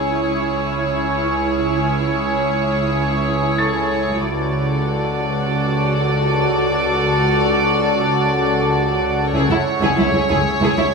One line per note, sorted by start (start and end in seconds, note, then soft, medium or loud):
0.00 4.19 C#2 medium
0.00 4.20 C#2 medium
0.00 4.20 E4 medium
0.00 1.32 G#4 soft
0.00 4.19 G#4 medium
0.00 4.19 C#5 medium
0.00 4.20 C#5 medium
0.00 1.33 G#5 soft
0.00 3.87 E6 soft
0.00 3.87 F6 soft
3.58 5.46 A4 soft
3.58 5.46 A6 soft
4.23 9.30 C#2 soft
4.23 9.30 C#2 medium
4.23 9.30 C#2 soft
4.23 9.30 F#4 soft
4.23 9.30 A4 soft
4.23 9.34 A4 soft
4.23 9.34 D5 soft
4.23 9.30 D5 medium
4.23 9.34 F#5 medium
9.33 9.40 C#2 medium
9.33 10.94 C#2 medium
9.33 9.40 E4 medium
9.33 10.94 G#4 medium
9.33 9.41 G#4 medium
9.33 10.94 C#5 medium
9.33 10.94 E5 medium
9.49 9.56 C#2 soft
9.49 9.56 E4 soft
9.81 9.88 C#2 medium
9.81 9.88 E4 medium
9.81 9.89 G#4 medium
9.97 10.03 C#2 soft
9.97 10.04 C#2 soft
9.97 10.04 E4 soft
9.97 10.06 E4 soft
10.12 10.19 C#2 soft
10.12 10.22 C#4 soft
10.12 10.20 E4 soft
10.28 10.35 C#2 medium
10.28 10.36 C#2 medium
10.28 10.36 E4 medium
10.28 10.36 G#4 medium
10.28 10.94 G#5 soft
10.61 10.67 C#2 medium
10.61 10.68 C#2 medium
10.61 10.68 E4 medium
10.61 10.69 G#4 medium
10.78 10.84 C#2 soft
10.78 10.84 E4 medium
10.78 10.84 E4 soft